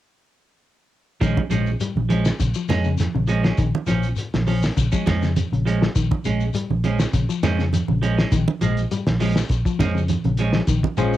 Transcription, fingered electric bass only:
1.21 A#1
1.50 A#1
1.96 A#1
2.40 A#1
2.69 F2
3.16 A#1
3.58 A#1
3.88 A#1
4.34 A#1
4.77 A#1
5.06 F2
5.52 A#1
5.96 A#1
6.25 A#1
6.70 A#1
7.14 A#1
7.43 F2
7.88 A#1
8.32 A#1
8.61 A#1
9.07 A#1
9.50 A#1
9.79 F2
10.25 A#1
10.67 A#1
10.97 A#1

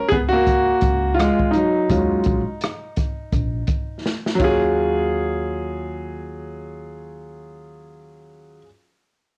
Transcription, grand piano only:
0.09 B3 G#4
0.29 A#3 F#4
1.14 F4
1.19 G#3
1.51 D#4
1.55 F#3
1.89 F#3 G#3 C#4 F4
4.35 F#3 C#4
4.41 F4 G#4

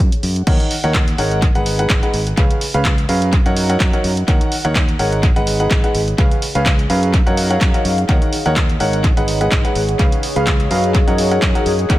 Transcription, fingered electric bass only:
0.23 F#2
0.47 D#2
0.84 D#2
1.18 G#1
1.55 G#1
2.14 G#1
2.37 C#2
2.74 C#2
3.09 F#2
3.46 F#2
3.80 F#2
4.04 F#2
4.28 D#2
4.65 D#2
4.99 G#1
5.36 G#1
5.95 G#1
6.18 C#2
6.55 C#2
6.90 F#2
7.27 F#2
7.61 F#2
7.85 F#2
8.09 D#2
8.46 D#2
8.80 G#1
9.17 G#1
9.76 G#1
9.99 C#2
10.36 C#2
10.71 F#2
11.08 F#2
11.66 F#2
11.90 D#2

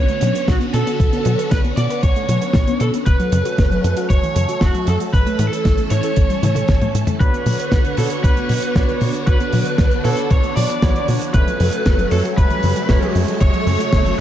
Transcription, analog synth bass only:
0.22 B2
0.48 B1
0.74 B2
1.00 B1
1.26 B2
1.51 B1
1.77 B2
2.03 B1
2.29 B2
2.55 B1
2.81 B2
3.07 F#1
3.32 F#2
3.58 F#1
3.84 F#2
4.10 F#1
4.36 F#2
4.62 F#1
4.88 F#2
5.13 A1
5.39 A2
5.65 A1
5.91 A2
6.17 A1
6.43 A2
6.69 A1
6.95 A2
7.20 B1
7.46 B2
7.72 B1
7.98 B2
8.24 B1
8.50 B2
8.76 B1
9.02 B2
9.27 B1
9.53 B2
9.79 B1
10.05 B2
10.31 B1
10.57 B2
10.82 B1
11.09 B2
11.34 F#1
11.60 F#2
11.86 F#1
12.12 F#2
12.38 F#1
12.64 F#2
12.89 F#1
13.16 F#2
13.41 F#1
13.67 F#2
13.93 F#1

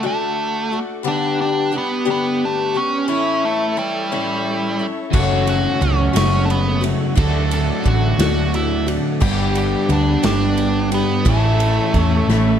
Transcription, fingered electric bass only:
5.14 F#1
5.81 C#2
6.15 F#1
7.18 D2
7.86 A1
8.18 D2
9.22 G1
9.89 D2
10.24 G1
11.26 A1
11.94 E2
12.27 A1

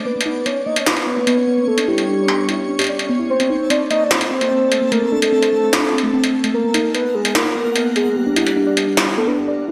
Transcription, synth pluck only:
0.05 A#3
0.15 B3
0.26 D#4
0.46 B3
0.66 A#3
0.76 B3
0.86 D#4
1.07 B3
1.17 A#3
1.27 B3
1.37 B4
1.47 B3
1.57 A#3
1.68 B3
1.78 D4
1.88 E4
2.08 D4
2.28 B3
2.39 D4
2.49 E4
2.69 D4
2.79 G4
2.89 D5
2.99 D5
3.09 B3
3.19 E4
3.30 A#3
3.40 C4
3.50 D#4
3.70 C4
3.80 C5
3.90 A#3
4.01 C4
4.11 D#4
4.31 C4
4.41 A#3
4.51 C4
4.72 C4
4.82 A#3
4.92 A3
5.02 C4
5.12 D4
5.32 C4
5.42 C5
5.53 A3
5.63 C4
5.73 D4
5.93 C4
6.03 A3
6.13 C4
6.34 C4
6.44 A3
6.54 A#3
6.64 B3
6.74 D#4
6.95 B3
7.05 B4
7.15 A#3
7.25 B3
7.35 D#4
7.55 B3
7.65 A#3
7.76 B3
7.96 B3
8.06 A#3
8.16 B3
8.26 D4
8.36 E4
8.57 D4
8.67 D5
8.77 B3
8.87 D4
8.97 E4
9.17 B3
9.28 D4
9.38 G4
9.48 D5
9.58 D5
9.68 E4

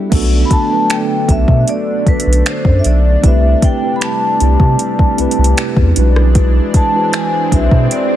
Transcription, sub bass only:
0.12 B1
1.29 B1
1.48 B2
2.07 B1
2.27 B1
2.65 F#2
2.85 B1
3.24 C2
4.41 C2
4.60 C3
5.19 C2
5.38 C2
5.77 E2
5.97 B1
7.52 B1
7.72 B2

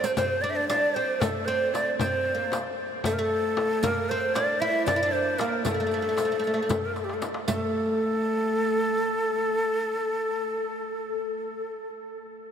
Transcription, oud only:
0.04 C4
0.18 C4
0.44 D4
0.70 D4
0.96 C4
1.21 A3
1.48 C4
2.00 C4
2.35 A#3
3.06 A3
3.19 A3
3.84 A#3
4.11 C4
4.36 D4
4.62 E4
4.88 D4
4.96 E4
5.03 D4
5.41 A#3
5.66 A3
5.74 A3
5.80 A3
5.87 A3
5.94 A3
6.02 A3
6.09 A3
6.17 A3
6.25 A3
6.32 A3
6.39 A3
6.47 A3
6.54 A3
6.62 A3
6.70 A3
7.48 A3

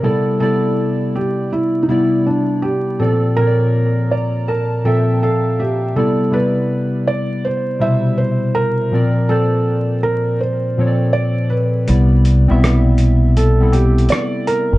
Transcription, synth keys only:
0.02 C3 G3 B3 E4 D5
0.40 C3 G3 B3 E4 D5
1.88 C3 G3 B3 E4 D5
2.99 A#2 F3 C4 A4 D5
3.38 A#2 F3 C4 A#4 C#5
3.47 D5
4.12 A#5
4.48 A5
4.84 A#2 F3 C4 A4 E5 G5
5.23 F5
5.59 E5
5.96 C3 G3 B3 E4 D5
6.31 C3 G3 B3 E4 D5
7.79 B2 C3 G3 E4 C5
8.91 A#2 F3 C4 A#4 D5
9.28 A#2 F3 C4 C5 D5
10.77 A#2 F3 C4 A4 C#5
10.87 D5
11.87 C3 G3 B3 E4 D5
12.48 G3 B3 C4 E4 E5
13.60 G3 B3 C4 E4 A4

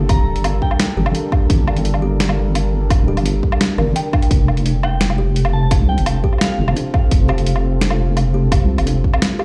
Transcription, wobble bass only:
Already playing: G1
0.18 D1
0.35 G1
0.97 G1
1.50 G1
2.99 D1
3.17 G1
3.78 G1
4.31 F1
5.80 C2
5.98 F1
6.59 F1
7.11 F1
8.61 C2
8.78 F1

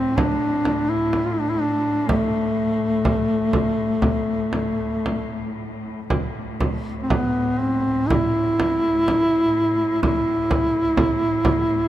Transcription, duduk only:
Already playing: C4
0.17 D4
0.89 E4
1.25 F4
1.32 E4
1.40 D4
1.50 E4
1.61 D4
2.08 A3
7.03 C4
7.12 B3
7.60 C4
8.08 E4
10.02 E4

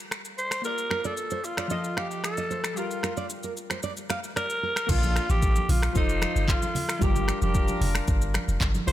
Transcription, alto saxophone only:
0.38 C5
0.65 A#4
1.05 A4
1.45 F4
1.98 G4
2.24 A4
2.78 F4
4.37 A#4
4.90 F4
5.30 G4
5.70 F4
5.97 D#4
6.49 F4
7.02 G4
7.43 G4
8.88 C5

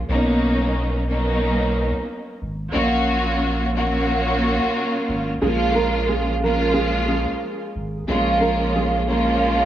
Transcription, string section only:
0.09 F#3 A#3 B3 C#4 D#4
1.09 F#3 A#3 B3 C#4 D#4
2.72 A#2 F#3 A#3 C#4 F4 F#4
3.75 A#2 F#3 A#3 C#4 F4 F#4
5.42 F3 G#3 A#3 C#4 F4
6.43 F3 G#3 A#3 C#4 F4
8.07 F3 G#3 A#3 C#4 F4
9.07 F3 G#3 A#3 C#4 F4

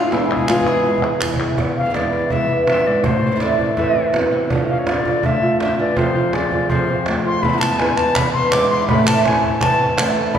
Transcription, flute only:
Already playing: F4
0.11 G#4
0.18 F4
0.26 G#4
1.77 F5
1.95 D5
2.31 E5
2.67 E5
2.87 D5
3.05 C5
3.41 D5
3.77 E5
4.70 F5
4.79 C#5
4.89 D5
5.26 E5
5.61 E5
5.79 D5
5.97 C5
6.35 D5
6.70 C5
7.26 C6
7.42 B5
7.60 A5
7.79 G#5
7.96 A5
8.15 B5
8.33 C6
8.52 D6
8.70 C6
8.88 B5
9.06 A5
9.25 G#5
9.60 A5
10.34 B5

